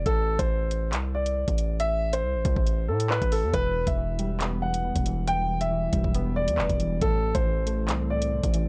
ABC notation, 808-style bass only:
X:1
M:4/4
L:1/16
Q:1/4=138
K:Ador
V:1 name="808-style bass" clef=bass
A,,,3 A,,,4- A,,, C,,4- C,, A,,,3- | A,,,4 C,, A,,, C,, A,,,3 A,,3 A,,,2 E,, | E,,,3 E,,,8- E,,,2 E,,,3- | E,,,6 E,,, E,,,4 E,, E,,, E,,,3 |
A,,,3 A,,,4- A,,, C,,4- C,, A,,,3 |]